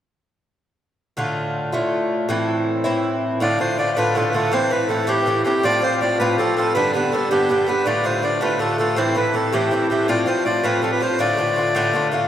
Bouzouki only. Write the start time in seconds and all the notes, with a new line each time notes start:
1.17 A2 D3 A3 F4
1.73 A2 D3 A3 F4
2.29 A2 E3 C4 E4
2.84 A2 E3 C4 E4
3.40 A2 D3 A3 F4
3.59 A2 D3 A3 F4
3.78 A2 D3 A3 F4
3.97 A2 D3 A3 F4
4.15 A2 D3 A3 F4
4.33 A2 D3 A3 F4
4.52 A2 E3 C4 E4
4.70 A2 E3 C4 E4
4.89 A2 E3 C4 E4
5.07 A2 E3 C4 E4
5.26 A2 E3 C4 E4
5.45 A2 E3 C4 E4
5.63 A2 F3 C4 F4
5.82 A2 F3 C4 F4
6.01 A2 F3 C4 F4
6.20 A2 F3 C4 F4
6.38 A2 F3 C4 F4
6.57 A2 F3 C4 F4
6.75 G2 D3 B3 D4
6.93 G2 D3 B3 D4
7.12 G2 D3 B3 D4
7.31 G2 D3 B3 D4
7.49 G2 D3 B3 D4
7.67 G2 D3 B3 D4
7.86 A2 D3 A3 F4
8.04 A2 D3 A3 F4
8.22 A2 D3 A3 F4
8.41 A2 D3 A3 F4
8.59 A2 D3 A3 F4
8.78 A2 D3 A3 F4
8.96 A2 E3 C4 E4
9.15 A2 E3 C4 E4
9.34 A2 E3 C4 E4
9.53 A2 E3 C4 E4
9.71 A2 E3 C4 E4
9.90 A2 E3 C4 E4
10.08 A2 F3 C4 F4
10.26 A2 F3 C4 F4
10.45 A2 F3 C4 F4
10.64 A2 F3 C4 F4
10.82 A2 F3 C4 F4
11.00 A2 F3 C4 F4
11.19 A2 D3 A3 F4
11.37 A2 D3 A3 F4
11.56 A2 D3 A3 F4
11.75 A2 D3 A3 F4
11.93 A2 D3 A3 F4
12.12 A2 D3 A3 F4